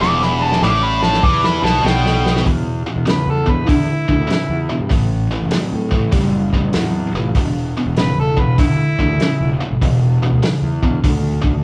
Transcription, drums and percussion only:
0, 0, Header, 1, 2, 480
1, 0, Start_track
1, 0, Key_signature, 1, "minor"
1, 0, Tempo, 612245
1, 9, Time_signature, 4, 2, 24, 8
1, 9125, End_track
2, 0, Start_track
2, 0, Title_t, "Drums"
2, 17, Note_on_c, 9, 38, 53
2, 95, Note_off_c, 9, 38, 0
2, 171, Note_on_c, 9, 38, 58
2, 249, Note_off_c, 9, 38, 0
2, 408, Note_on_c, 9, 38, 65
2, 486, Note_off_c, 9, 38, 0
2, 489, Note_on_c, 9, 38, 65
2, 567, Note_off_c, 9, 38, 0
2, 804, Note_on_c, 9, 38, 70
2, 882, Note_off_c, 9, 38, 0
2, 890, Note_on_c, 9, 38, 59
2, 966, Note_on_c, 9, 36, 110
2, 968, Note_off_c, 9, 38, 0
2, 1045, Note_off_c, 9, 36, 0
2, 1131, Note_on_c, 9, 38, 76
2, 1209, Note_off_c, 9, 38, 0
2, 1295, Note_on_c, 9, 38, 80
2, 1374, Note_off_c, 9, 38, 0
2, 1461, Note_on_c, 9, 38, 97
2, 1540, Note_off_c, 9, 38, 0
2, 1615, Note_on_c, 9, 38, 75
2, 1693, Note_off_c, 9, 38, 0
2, 1774, Note_on_c, 9, 38, 86
2, 1852, Note_off_c, 9, 38, 0
2, 1852, Note_on_c, 9, 38, 83
2, 1930, Note_on_c, 9, 36, 88
2, 1930, Note_on_c, 9, 46, 49
2, 1931, Note_off_c, 9, 38, 0
2, 2008, Note_off_c, 9, 36, 0
2, 2009, Note_off_c, 9, 46, 0
2, 2406, Note_on_c, 9, 46, 41
2, 2413, Note_on_c, 9, 38, 103
2, 2484, Note_off_c, 9, 46, 0
2, 2492, Note_off_c, 9, 38, 0
2, 2724, Note_on_c, 9, 36, 79
2, 2802, Note_off_c, 9, 36, 0
2, 2891, Note_on_c, 9, 36, 107
2, 2892, Note_on_c, 9, 46, 52
2, 2969, Note_off_c, 9, 36, 0
2, 2971, Note_off_c, 9, 46, 0
2, 3205, Note_on_c, 9, 36, 77
2, 3284, Note_off_c, 9, 36, 0
2, 3373, Note_on_c, 9, 46, 46
2, 3380, Note_on_c, 9, 38, 91
2, 3451, Note_off_c, 9, 46, 0
2, 3459, Note_off_c, 9, 38, 0
2, 3848, Note_on_c, 9, 36, 100
2, 3850, Note_on_c, 9, 46, 45
2, 3926, Note_off_c, 9, 36, 0
2, 3928, Note_off_c, 9, 46, 0
2, 4318, Note_on_c, 9, 46, 52
2, 4326, Note_on_c, 9, 38, 88
2, 4397, Note_off_c, 9, 46, 0
2, 4405, Note_off_c, 9, 38, 0
2, 4639, Note_on_c, 9, 36, 81
2, 4717, Note_off_c, 9, 36, 0
2, 4800, Note_on_c, 9, 46, 56
2, 4803, Note_on_c, 9, 36, 101
2, 4878, Note_off_c, 9, 46, 0
2, 4881, Note_off_c, 9, 36, 0
2, 5117, Note_on_c, 9, 36, 74
2, 5196, Note_off_c, 9, 36, 0
2, 5276, Note_on_c, 9, 46, 47
2, 5284, Note_on_c, 9, 38, 93
2, 5354, Note_off_c, 9, 46, 0
2, 5362, Note_off_c, 9, 38, 0
2, 5761, Note_on_c, 9, 46, 48
2, 5763, Note_on_c, 9, 36, 91
2, 5840, Note_off_c, 9, 46, 0
2, 5841, Note_off_c, 9, 36, 0
2, 6245, Note_on_c, 9, 46, 40
2, 6253, Note_on_c, 9, 38, 96
2, 6323, Note_off_c, 9, 46, 0
2, 6331, Note_off_c, 9, 38, 0
2, 6563, Note_on_c, 9, 36, 76
2, 6642, Note_off_c, 9, 36, 0
2, 6729, Note_on_c, 9, 36, 118
2, 6729, Note_on_c, 9, 46, 54
2, 6807, Note_off_c, 9, 36, 0
2, 6808, Note_off_c, 9, 46, 0
2, 7047, Note_on_c, 9, 36, 76
2, 7125, Note_off_c, 9, 36, 0
2, 7211, Note_on_c, 9, 46, 43
2, 7219, Note_on_c, 9, 38, 96
2, 7290, Note_off_c, 9, 46, 0
2, 7298, Note_off_c, 9, 38, 0
2, 7695, Note_on_c, 9, 36, 90
2, 7700, Note_on_c, 9, 46, 46
2, 7773, Note_off_c, 9, 36, 0
2, 7778, Note_off_c, 9, 46, 0
2, 8175, Note_on_c, 9, 46, 48
2, 8183, Note_on_c, 9, 38, 91
2, 8253, Note_off_c, 9, 46, 0
2, 8261, Note_off_c, 9, 38, 0
2, 8488, Note_on_c, 9, 36, 83
2, 8566, Note_off_c, 9, 36, 0
2, 8654, Note_on_c, 9, 36, 111
2, 8657, Note_on_c, 9, 46, 55
2, 8733, Note_off_c, 9, 36, 0
2, 8735, Note_off_c, 9, 46, 0
2, 8968, Note_on_c, 9, 36, 79
2, 9047, Note_off_c, 9, 36, 0
2, 9125, End_track
0, 0, End_of_file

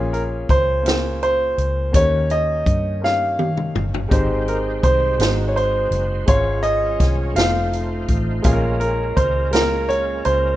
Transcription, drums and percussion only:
0, 0, Header, 1, 2, 480
1, 0, Start_track
1, 0, Tempo, 723240
1, 1288, Time_signature, 6, 3, 24, 8
1, 7010, End_track
2, 0, Start_track
2, 0, Title_t, "Drums"
2, 91, Note_on_c, 9, 42, 42
2, 158, Note_off_c, 9, 42, 0
2, 327, Note_on_c, 9, 36, 79
2, 330, Note_on_c, 9, 42, 52
2, 394, Note_off_c, 9, 36, 0
2, 396, Note_off_c, 9, 42, 0
2, 570, Note_on_c, 9, 42, 75
2, 582, Note_on_c, 9, 38, 98
2, 636, Note_off_c, 9, 42, 0
2, 648, Note_off_c, 9, 38, 0
2, 814, Note_on_c, 9, 42, 39
2, 880, Note_off_c, 9, 42, 0
2, 1050, Note_on_c, 9, 42, 50
2, 1116, Note_off_c, 9, 42, 0
2, 1288, Note_on_c, 9, 36, 98
2, 1288, Note_on_c, 9, 42, 73
2, 1355, Note_off_c, 9, 36, 0
2, 1355, Note_off_c, 9, 42, 0
2, 1526, Note_on_c, 9, 42, 46
2, 1592, Note_off_c, 9, 42, 0
2, 1768, Note_on_c, 9, 36, 84
2, 1770, Note_on_c, 9, 42, 50
2, 1834, Note_off_c, 9, 36, 0
2, 1837, Note_off_c, 9, 42, 0
2, 2021, Note_on_c, 9, 38, 49
2, 2087, Note_off_c, 9, 38, 0
2, 2249, Note_on_c, 9, 48, 65
2, 2316, Note_off_c, 9, 48, 0
2, 2371, Note_on_c, 9, 47, 61
2, 2438, Note_off_c, 9, 47, 0
2, 2492, Note_on_c, 9, 45, 82
2, 2558, Note_off_c, 9, 45, 0
2, 2616, Note_on_c, 9, 43, 76
2, 2683, Note_off_c, 9, 43, 0
2, 2730, Note_on_c, 9, 36, 93
2, 2732, Note_on_c, 9, 42, 72
2, 2796, Note_off_c, 9, 36, 0
2, 2798, Note_off_c, 9, 42, 0
2, 2972, Note_on_c, 9, 42, 42
2, 3039, Note_off_c, 9, 42, 0
2, 3208, Note_on_c, 9, 36, 84
2, 3209, Note_on_c, 9, 42, 52
2, 3275, Note_off_c, 9, 36, 0
2, 3276, Note_off_c, 9, 42, 0
2, 3448, Note_on_c, 9, 42, 75
2, 3460, Note_on_c, 9, 38, 96
2, 3514, Note_off_c, 9, 42, 0
2, 3527, Note_off_c, 9, 38, 0
2, 3698, Note_on_c, 9, 42, 37
2, 3764, Note_off_c, 9, 42, 0
2, 3927, Note_on_c, 9, 42, 49
2, 3993, Note_off_c, 9, 42, 0
2, 4164, Note_on_c, 9, 42, 77
2, 4167, Note_on_c, 9, 36, 100
2, 4231, Note_off_c, 9, 42, 0
2, 4234, Note_off_c, 9, 36, 0
2, 4403, Note_on_c, 9, 42, 43
2, 4469, Note_off_c, 9, 42, 0
2, 4646, Note_on_c, 9, 36, 80
2, 4646, Note_on_c, 9, 42, 52
2, 4658, Note_on_c, 9, 38, 34
2, 4712, Note_off_c, 9, 36, 0
2, 4712, Note_off_c, 9, 42, 0
2, 4725, Note_off_c, 9, 38, 0
2, 4885, Note_on_c, 9, 42, 77
2, 4898, Note_on_c, 9, 38, 105
2, 4952, Note_off_c, 9, 42, 0
2, 4964, Note_off_c, 9, 38, 0
2, 5132, Note_on_c, 9, 42, 38
2, 5198, Note_off_c, 9, 42, 0
2, 5364, Note_on_c, 9, 42, 49
2, 5368, Note_on_c, 9, 36, 80
2, 5431, Note_off_c, 9, 42, 0
2, 5434, Note_off_c, 9, 36, 0
2, 5601, Note_on_c, 9, 42, 78
2, 5606, Note_on_c, 9, 36, 96
2, 5667, Note_off_c, 9, 42, 0
2, 5673, Note_off_c, 9, 36, 0
2, 5844, Note_on_c, 9, 42, 43
2, 5911, Note_off_c, 9, 42, 0
2, 6085, Note_on_c, 9, 36, 81
2, 6088, Note_on_c, 9, 42, 51
2, 6152, Note_off_c, 9, 36, 0
2, 6154, Note_off_c, 9, 42, 0
2, 6322, Note_on_c, 9, 42, 78
2, 6335, Note_on_c, 9, 38, 104
2, 6389, Note_off_c, 9, 42, 0
2, 6401, Note_off_c, 9, 38, 0
2, 6571, Note_on_c, 9, 42, 40
2, 6638, Note_off_c, 9, 42, 0
2, 6801, Note_on_c, 9, 42, 49
2, 6867, Note_off_c, 9, 42, 0
2, 7010, End_track
0, 0, End_of_file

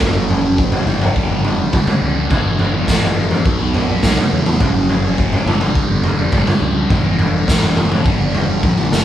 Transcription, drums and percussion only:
0, 0, Header, 1, 2, 480
1, 0, Start_track
1, 0, Tempo, 574713
1, 8, Time_signature, 4, 2, 24, 8
1, 7555, End_track
2, 0, Start_track
2, 0, Title_t, "Drums"
2, 3, Note_on_c, 9, 43, 81
2, 6, Note_on_c, 9, 36, 105
2, 87, Note_off_c, 9, 43, 0
2, 90, Note_off_c, 9, 36, 0
2, 251, Note_on_c, 9, 43, 83
2, 334, Note_off_c, 9, 43, 0
2, 487, Note_on_c, 9, 36, 107
2, 571, Note_off_c, 9, 36, 0
2, 603, Note_on_c, 9, 43, 84
2, 686, Note_off_c, 9, 43, 0
2, 725, Note_on_c, 9, 47, 73
2, 809, Note_off_c, 9, 47, 0
2, 847, Note_on_c, 9, 43, 89
2, 931, Note_off_c, 9, 43, 0
2, 969, Note_on_c, 9, 36, 101
2, 1052, Note_off_c, 9, 36, 0
2, 1207, Note_on_c, 9, 43, 80
2, 1291, Note_off_c, 9, 43, 0
2, 1444, Note_on_c, 9, 47, 81
2, 1447, Note_on_c, 9, 36, 107
2, 1528, Note_off_c, 9, 47, 0
2, 1531, Note_off_c, 9, 36, 0
2, 1564, Note_on_c, 9, 43, 85
2, 1564, Note_on_c, 9, 47, 78
2, 1648, Note_off_c, 9, 43, 0
2, 1648, Note_off_c, 9, 47, 0
2, 1924, Note_on_c, 9, 43, 86
2, 1927, Note_on_c, 9, 36, 114
2, 2007, Note_off_c, 9, 43, 0
2, 2011, Note_off_c, 9, 36, 0
2, 2164, Note_on_c, 9, 43, 84
2, 2248, Note_off_c, 9, 43, 0
2, 2401, Note_on_c, 9, 38, 73
2, 2406, Note_on_c, 9, 36, 101
2, 2485, Note_off_c, 9, 38, 0
2, 2489, Note_off_c, 9, 36, 0
2, 2520, Note_on_c, 9, 43, 86
2, 2604, Note_off_c, 9, 43, 0
2, 2764, Note_on_c, 9, 43, 83
2, 2848, Note_off_c, 9, 43, 0
2, 2886, Note_on_c, 9, 36, 104
2, 2970, Note_off_c, 9, 36, 0
2, 3128, Note_on_c, 9, 43, 82
2, 3211, Note_off_c, 9, 43, 0
2, 3364, Note_on_c, 9, 38, 82
2, 3364, Note_on_c, 9, 47, 74
2, 3367, Note_on_c, 9, 36, 111
2, 3448, Note_off_c, 9, 38, 0
2, 3448, Note_off_c, 9, 47, 0
2, 3450, Note_off_c, 9, 36, 0
2, 3485, Note_on_c, 9, 43, 83
2, 3485, Note_on_c, 9, 47, 84
2, 3569, Note_off_c, 9, 43, 0
2, 3569, Note_off_c, 9, 47, 0
2, 3728, Note_on_c, 9, 47, 83
2, 3811, Note_off_c, 9, 47, 0
2, 3846, Note_on_c, 9, 43, 91
2, 3847, Note_on_c, 9, 36, 113
2, 3930, Note_off_c, 9, 36, 0
2, 3930, Note_off_c, 9, 43, 0
2, 4086, Note_on_c, 9, 43, 82
2, 4170, Note_off_c, 9, 43, 0
2, 4329, Note_on_c, 9, 36, 101
2, 4412, Note_off_c, 9, 36, 0
2, 4450, Note_on_c, 9, 43, 85
2, 4534, Note_off_c, 9, 43, 0
2, 4572, Note_on_c, 9, 47, 77
2, 4656, Note_off_c, 9, 47, 0
2, 4686, Note_on_c, 9, 43, 88
2, 4770, Note_off_c, 9, 43, 0
2, 4806, Note_on_c, 9, 36, 111
2, 4890, Note_off_c, 9, 36, 0
2, 5041, Note_on_c, 9, 43, 81
2, 5124, Note_off_c, 9, 43, 0
2, 5279, Note_on_c, 9, 47, 75
2, 5285, Note_on_c, 9, 36, 110
2, 5363, Note_off_c, 9, 47, 0
2, 5368, Note_off_c, 9, 36, 0
2, 5405, Note_on_c, 9, 43, 83
2, 5405, Note_on_c, 9, 47, 76
2, 5489, Note_off_c, 9, 43, 0
2, 5489, Note_off_c, 9, 47, 0
2, 5766, Note_on_c, 9, 36, 110
2, 5766, Note_on_c, 9, 43, 82
2, 5850, Note_off_c, 9, 36, 0
2, 5850, Note_off_c, 9, 43, 0
2, 6005, Note_on_c, 9, 43, 84
2, 6089, Note_off_c, 9, 43, 0
2, 6247, Note_on_c, 9, 36, 113
2, 6248, Note_on_c, 9, 38, 76
2, 6331, Note_off_c, 9, 36, 0
2, 6331, Note_off_c, 9, 38, 0
2, 6368, Note_on_c, 9, 43, 83
2, 6452, Note_off_c, 9, 43, 0
2, 6492, Note_on_c, 9, 47, 74
2, 6575, Note_off_c, 9, 47, 0
2, 6612, Note_on_c, 9, 43, 89
2, 6696, Note_off_c, 9, 43, 0
2, 6729, Note_on_c, 9, 36, 114
2, 6812, Note_off_c, 9, 36, 0
2, 6970, Note_on_c, 9, 43, 83
2, 7054, Note_off_c, 9, 43, 0
2, 7209, Note_on_c, 9, 36, 111
2, 7212, Note_on_c, 9, 48, 60
2, 7292, Note_off_c, 9, 36, 0
2, 7295, Note_off_c, 9, 48, 0
2, 7332, Note_on_c, 9, 47, 66
2, 7415, Note_off_c, 9, 47, 0
2, 7453, Note_on_c, 9, 38, 86
2, 7537, Note_off_c, 9, 38, 0
2, 7555, End_track
0, 0, End_of_file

